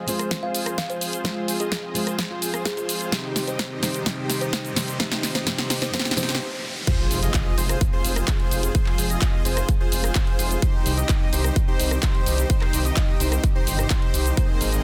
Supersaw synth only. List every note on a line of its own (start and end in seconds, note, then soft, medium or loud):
0.08 0.29 F4 medium
0.08 0.29 G#4 medium
0.08 0.29 C5 loud
0.43 0.75 F4 medium
0.43 0.75 G#4 medium
0.43 0.75 C5 loud
0.78 1.22 F4 medium
0.78 1.22 G#4 medium
0.78 1.22 C5 loud
1.25 1.57 F4 medium
1.25 1.57 G#4 medium
1.25 1.57 C5 loud
1.60 1.92 F4 medium
1.60 1.92 G#4 medium
1.60 1.92 D#5 medium
1.95 2.17 F4 medium
1.95 2.17 G#4 medium
1.95 2.17 C5 loud
2.30 2.63 F4 medium
2.30 2.63 G#4 medium
2.30 2.63 C5 loud
2.65 3.10 F4 medium
2.65 3.10 G#4 medium
2.65 3.10 C5 loud
3.12 3.45 D#4 medium
3.12 3.45 G4 medium
3.12 3.45 C5 medium
3.48 3.80 D#4 medium
3.48 3.80 G4 medium
3.48 3.80 D#5 medium
3.83 4.04 D#4 medium
3.83 4.04 G4 medium
3.83 4.04 C5 medium
4.06 4.38 D#4 medium
4.06 4.38 G4 medium
4.06 4.38 C5 loud
4.41 4.74 D#4 medium
4.41 4.74 G4 medium
4.41 4.74 D#5 medium
4.76 4.98 D#4 medium
4.76 4.98 G4 medium
4.76 4.98 C5 medium
5.00 5.32 D#4 medium
5.00 5.32 G4 medium
5.00 5.32 C5 loud
5.35 5.45 D#4 medium
5.35 5.45 G4 medium
5.35 5.45 D#5 medium
5.47 5.79 D#4 loud
5.47 5.79 G4 medium
5.47 5.79 C5 loud
5.82 5.92 D#4 medium
5.82 5.92 G4 medium
5.82 5.92 D#5 medium
5.94 6.15 D#4 medium
5.94 6.15 G4 medium
5.94 6.15 C5 loud
6.17 6.39 D#4 loud
6.17 6.39 G4 medium
6.17 6.39 C5 loud
6.87 7.20 F4 medium
6.87 7.20 G#4 medium
6.87 7.20 C5 loud
7.22 7.55 F4 medium
7.22 7.55 G#4 medium
7.22 7.55 D#5 medium
7.58 7.79 F4 medium
7.58 7.79 G#4 medium
7.58 7.79 C5 loud
7.93 8.25 F4 medium
7.93 8.25 G#4 medium
7.93 8.25 C5 loud
8.28 8.72 F4 medium
8.28 8.72 G#4 medium
8.28 8.72 C5 loud
8.75 9.07 F4 medium
8.75 9.07 G#4 medium
8.75 9.07 C5 loud
9.10 9.42 F4 medium
9.10 9.42 G#4 medium
9.10 9.42 D#5 loud
9.45 9.67 F4 medium
9.45 9.67 G#4 medium
9.45 9.67 C5 loud
9.80 10.13 F4 medium
9.80 10.13 G#4 medium
9.80 10.13 C5 loud
10.15 10.60 F4 medium
10.15 10.60 G#4 medium
10.15 10.60 C5 loud
10.62 10.95 D#4 loud
10.62 10.95 G4 medium
10.62 10.95 C5 loud
10.98 11.30 D#4 medium
10.98 11.30 G4 medium
10.98 11.30 D#5 medium
11.33 11.54 D#4 medium
11.33 11.54 G4 medium
11.33 11.54 C5 loud
11.68 12.00 D#4 medium
11.68 12.00 G4 medium
11.68 12.00 C5 loud
12.03 12.47 D#4 medium
12.03 12.47 G4 medium
12.03 12.47 C5 loud
12.50 12.82 D#4 medium
12.50 12.82 G4 medium
12.50 12.82 C5 loud
12.85 13.17 D#4 medium
12.85 13.17 G4 medium
12.85 13.17 D#5 loud
13.20 13.42 D#4 medium
13.20 13.42 G4 medium
13.20 13.42 C5 loud
13.55 13.88 D#4 medium
13.55 13.88 G4 medium
13.55 13.88 C5 loud
13.90 14.35 D#4 medium
13.90 14.35 G4 medium
13.90 14.35 C5 loud
14.37 14.70 A#3 medium
14.37 14.70 C4 medium
14.37 14.70 D#4 medium
14.37 14.70 G#4 medium
14.37 14.70 C5 loud
14.73 14.84 A#3 medium
14.73 14.84 C4 medium
14.73 14.84 D#4 medium
14.73 14.84 G#4 medium
14.73 14.84 D#5 medium